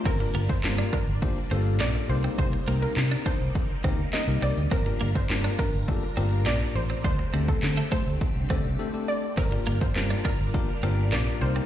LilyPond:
<<
  \new Staff \with { instrumentName = "Synth pluck" } { \time 4/4 \key g \minor \tempo 4 = 103 bes'8 r16 c''8 r16 bes'16 r4 r16 d''16 r16 c''16 r16 | c''8 r16 bes'8 r16 c''16 r4 r16 ees''16 r16 d''16 r16 | bes'8 r16 c''8 r16 bes'16 r4 r16 d''16 r16 c''16 r16 | c''8 r16 a'8 r16 c''16 r4. r16 d''16 r16 |
bes'8 r16 c''8 r16 bes'16 r4 r16 d''16 r16 c''16 r16 | }
  \new Staff \with { instrumentName = "Tine electric piano" } { \time 4/4 \key g \minor r16 <bes d' f' g' bes'>8 r16 <bes d' f' g' bes'>8 r8 <bes d' f' g' c''>16 r16 <bes d' f' g' a'>4 <bes c' ees' g' bes'>8~ | <bes c' ees' g' bes'>16 r16 <bes c' ees' g' bes'>4 r4 <bes c' ees' g' bes'>16 r16 <bes c' ees' g' bes'>16 <bes c' ees' g' bes'>8 r16 | r16 <bes d' f' g' bes'>8 r16 <bes d' f' g' bes'>8 r8 <bes d' f' g' a'>16 r16 <bes d' f' g' bes'>4 r8 | r8 <a c' d' g' a'>4 r4 <a c' d' g' a'>16 r16 <a c' d' g' a'>16 <a c' d' g' a'>8 r16 |
r16 <bes d' f' g' bes'>8 r16 <bes d' f' g' bes'>8 r8 <bes d' f' g' bes'>16 r16 <bes d' f' g' bes'>4 <bes c' ees' g' bes'>8 | }
  \new Staff \with { instrumentName = "String machine" } { \time 4/4 \key g \minor <g bes d' f'>2.~ <g bes d' f'>8 <c bes ees'>8~ | <c bes ees'>1 | <d' f' bes'>1 | <d a c' g'>1 |
<g d' f' bes'>2.~ <g d' f' bes'>8 <c g bes ees'>8 | }
  \new Staff \with { instrumentName = "Clean electric guitar" } { \time 4/4 \key g \minor c'16 r16 bes16 r8 d'16 d'16 r8. c'16 r16 bes16 r8 c'16 | c'16 r16 bes16 r8 d'16 d'16 r8. c'16 r8. c'16 r16 | c'16 r16 bes16 r8 d'16 d'16 r8. c'16 r16 bes16 r8 c'16 | d'16 r16 c'16 r8 a16 a16 r8. c'16 r4 r16 |
c'16 r16 bes16 r8 d'16 d'16 r8. c'16 r16 bes16 r8 c'16 | }
  \new Staff \with { instrumentName = "Fingered electric bass" } { \clef bass \time 4/4 \key g \minor g,,8 g,,8 g,8 r16 g,,16 r8 g,,8 bes,,8 c,8 | c,8 c,8 c8 r16 c,16 r8 d,8 r16 c,16 c,16 d,16 | g,,8 g,,8 g,8 r16 g,,16 r8 g,,8 bes,,8 a,,8 | d,8 d,8 d8 r16 d,16 r16 c,16 d,16 c,16 r4 |
g,,8 g,,8 g,8 r16 g,,16 r8 g,,8 bes,,8 c,8 | }
  \new DrumStaff \with { instrumentName = "Drums" } \drummode { \time 4/4 <cymc hh bd>8 hh16 bd16 <hc hh sn>8 <hh bd>8 <hh bd>8 hh8 <hc hh sn>8 hho8 | <hh bd>8 hh8 <hc hh sn>8 <hh bd>8 <hh bd>8 <hh bd>8 <hc hh sn>8 hho8 | <hh bd>8 hh16 bd16 <hc hh sn>8 <hh bd>8 <hh bd>8 hh8 <hc hh sn>8 hho8 | <hh bd>8 hh16 bd16 <hc hh sn>8 <hh bd>8 <hh bd>8 <hh bd>8 r4 |
<hh bd>8 hh16 bd16 <hc hh sn>8 <hh bd>8 <hh bd>8 hh8 <hc hh sn>8 hho8 | }
>>